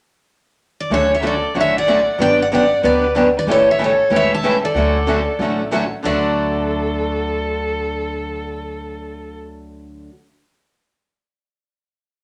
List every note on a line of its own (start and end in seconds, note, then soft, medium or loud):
0.80 0.91 D5 medium
0.90 1.42 D2 medium
0.90 1.11 D3 medium
0.90 1.11 F#3 medium
0.90 1.12 A3 medium
0.90 1.12 C#4 medium
0.90 1.12 F#4 medium
0.90 1.12 A4 medium
0.90 1.10 A4 medium
0.90 1.13 C#5 medium
1.11 1.23 C#5 medium
1.11 1.24 E5 medium
1.22 1.34 D3 medium
1.22 1.34 F#3 medium
1.22 1.34 A3 medium
1.22 1.34 C#4 medium
1.22 1.34 F#4 medium
1.22 1.53 A4 medium
1.22 1.34 A4 medium
1.27 1.55 D5 medium
1.55 2.06 A1 medium
1.55 1.75 D3 medium
1.55 1.76 F#3 medium
1.55 1.75 A3 medium
1.55 1.76 C#4 medium
1.55 1.76 F#4 medium
1.55 1.76 A4 medium
1.55 1.74 C#5 medium
1.61 1.76 E5 medium
1.77 2.17 D5 medium
1.77 2.18 F#5 medium
1.87 1.98 D3 medium
1.87 1.99 F#3 medium
1.87 1.99 A3 medium
1.87 1.99 C#4 medium
1.87 1.99 F#4 medium
1.87 1.99 A4 medium
2.18 2.70 G1 medium
2.18 2.39 D3 medium
2.18 2.39 F#3 medium
2.18 2.40 B3 medium
2.18 2.40 D4 medium
2.18 2.40 G4 medium
2.18 2.38 D5 medium
2.18 2.39 G5 loud
2.42 2.47 D5 medium
2.42 2.47 F#5 medium
2.52 2.63 D3 medium
2.52 2.63 F#3 medium
2.52 2.63 B3 medium
2.52 2.63 D4 medium
2.52 2.63 G4 medium
2.52 2.82 D5 medium
2.52 2.83 F#5 medium
2.83 3.35 D2 medium
2.83 3.04 D3 medium
2.83 3.04 F#3 medium
2.83 3.04 B3 medium
2.83 3.04 D4 medium
2.83 3.04 G4 medium
2.83 3.14 B4 medium
2.83 3.14 D5 medium
3.15 3.26 D3 medium
3.15 3.27 F#3 medium
3.15 3.27 B3 medium
3.15 3.27 D4 medium
3.15 3.27 G4 medium
3.37 3.42 B4 medium
3.37 3.44 D5 medium
3.47 3.98 A1 medium
3.47 3.68 C#3 medium
3.47 3.68 E3 medium
3.47 3.68 G3 medium
3.47 3.68 A3 medium
3.47 3.68 C#4 medium
3.47 3.68 E4 medium
3.47 3.68 G4 medium
3.47 3.68 A4 medium
3.47 3.67 A4 medium
3.51 3.68 C#5 loud
3.69 3.80 C#5 medium
3.69 3.81 E5 medium
3.79 3.90 C#3 medium
3.79 3.91 E3 medium
3.79 3.90 G3 medium
3.79 3.91 A3 medium
3.79 3.91 C#4 medium
3.79 3.90 E4 medium
3.79 3.91 G4 medium
3.79 3.90 A4 medium
3.79 4.11 A4 medium
3.84 4.15 C#5 medium
4.10 4.62 E1 medium
4.10 4.31 C#3 medium
4.10 4.32 E3 medium
4.10 4.32 G3 medium
4.10 4.31 A3 medium
4.10 4.32 C#4 medium
4.10 4.32 E4 medium
4.10 4.32 G4 medium
4.10 4.32 A4 medium
4.15 4.32 C#5 medium
4.15 4.32 E5 loud
4.34 4.63 E5 medium
4.34 4.66 A5 medium
4.43 4.55 C#3 medium
4.43 4.55 E3 medium
4.43 4.55 G3 medium
4.43 4.55 A3 medium
4.43 4.55 C#4 medium
4.43 4.55 E4 medium
4.43 4.55 G4 medium
4.43 4.55 A4 medium
4.64 5.68 A4 medium
4.64 5.69 D5 medium
4.74 5.26 D2 medium
4.74 4.96 D3 medium
4.74 4.96 F#3 medium
4.74 4.96 A3 medium
4.74 4.97 C#4 medium
4.74 4.97 F#4 medium
4.74 4.96 A4 medium
5.07 5.19 D3 medium
5.07 5.19 F#3 medium
5.07 5.19 A3 medium
5.07 5.19 C#4 medium
5.07 5.19 F#4 medium
5.07 5.19 A4 medium
5.39 5.90 A1 medium
5.39 5.61 D3 medium
5.39 5.61 F#3 medium
5.39 5.61 A3 medium
5.39 5.61 C#4 medium
5.39 5.61 F#4 medium
5.39 5.60 A4 medium
5.71 5.83 D3 medium
5.71 5.83 F#3 medium
5.71 5.83 A3 medium
5.71 5.83 C#4 medium
5.71 5.83 F#4 medium
5.71 5.83 A4 medium
6.04 10.06 D2 medium
6.04 10.10 D3 medium
6.04 10.10 F#3 medium
6.04 10.11 A3 medium
6.04 10.11 F#4 loud
6.04 9.36 A4 medium
6.04 10.11 A4 medium
6.04 10.06 D5 medium